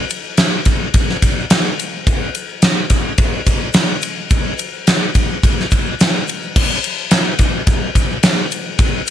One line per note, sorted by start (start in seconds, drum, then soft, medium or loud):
0.10 ride medium
0.10 shaker medium
0.23 shaker soft
0.37 snare loud
0.37 ride loud
0.37 shaker medium
0.65 kick medium
0.65 ride medium
0.65 shaker medium
0.94 kick loud
0.94 ride medium
0.94 shaker medium
1.09 snare soft
1.22 kick medium
1.22 ride medium
1.22 shaker medium
1.39 shaker soft
1.50 snare loud
1.50 ride loud
1.50 shaker medium
1.79 ride medium
1.79 shaker medium
2.07 kick loud
2.07 ride loud
2.07 shaker medium
2.35 ride medium
2.35 shaker loud
2.49 shaker soft
2.62 snare loud
2.62 ride medium
2.62 shaker medium
2.90 kick medium
2.90 ride medium
2.90 shaker loud
3.18 kick loud
3.18 ride loud
3.18 shaker medium
3.47 kick medium
3.47 ride medium
3.47 shaker loud
3.59 shaker soft
3.73 snare loud
3.73 ride loud
3.73 shaker medium
4.01 ride medium
4.01 shaker loud
4.30 kick loud
4.30 ride loud
4.30 shaker medium
4.58 ride medium
4.58 shaker loud
4.73 shaker soft
4.87 snare loud
4.87 ride medium
4.87 shaker medium
5.14 kick medium
5.14 ride medium
5.14 shaker loud
5.29 shaker soft
5.43 kick loud
5.43 ride medium
5.43 shaker medium
5.60 snare soft
5.71 kick medium
5.71 ride medium
5.71 shaker medium
5.85 shaker soft
5.99 snare loud
5.99 ride loud
5.99 shaker medium
6.27 ride medium
6.27 shaker medium
6.42 shaker soft
6.56 kick loud
6.56 crash medium
6.56 shaker medium
6.83 ride medium
6.83 shaker medium
6.97 shaker soft
7.11 snare loud
7.11 ride medium
7.11 shaker medium
7.39 kick medium
7.39 ride medium
7.39 shaker loud
7.67 kick loud
7.67 ride medium
7.67 shaker medium
7.95 kick medium
7.95 ride medium
7.95 shaker medium
8.11 shaker soft
8.23 snare loud
8.23 ride loud
8.23 shaker medium
8.51 ride medium
8.51 shaker loud
8.79 kick loud
8.79 ride loud
8.79 shaker medium
9.06 shaker loud